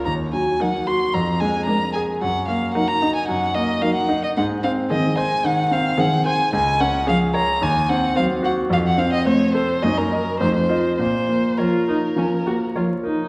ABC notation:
X:1
M:4/4
L:1/16
Q:1/4=110
K:Bbm
V:1 name="Violin"
b2 a2 g2 c'2 b2 a2 b2 a2 | g2 f2 g b2 a g2 e2 f g2 e | g2 f2 e2 a2 g2 f2 g2 a2 | a2 g2 f2 b2 a2 g2 f2 g2 |
f g f e d2 c2 e B3 c c3 | c4 B8 z4 |]
V:2 name="Grand piano"
E,,2 G,2 B2 G2 F,,2 A,2 B2 A2 | G,,2 B,2 B2 E2 G,,2 B,2 B2 E2 | A,,2 C2 A2 c2 E,2 C2 A2 c2 | D,,2 D2 A2 d2 E,,2 C2 c2 G2 |
F,,2 C2 c2 =A2 G,,2 [Be]2 F,,2 [Fe]2 | B,,2 B,2 d2 B2 F,2 B,2 d2 B2 |]
V:3 name="Viola"
z4 E4 z4 =D4 | z4 E4 z4 E4 | z4 C4 z4 C4 | z4 D4 z4 C4 |
z4 C4 E4 E4 | z4 F2 E2 D2 G2 F2 E2 |]
V:4 name="Cello" clef=bass
z4 G,4 z4 A,4 | z4 G,4 z4 G,4 | z4 E,4 z4 E,4 | z4 F,4 z4 G,4 |
z4 =A,4 B,4 A,4 | z4 F,4 z4 F,4 |]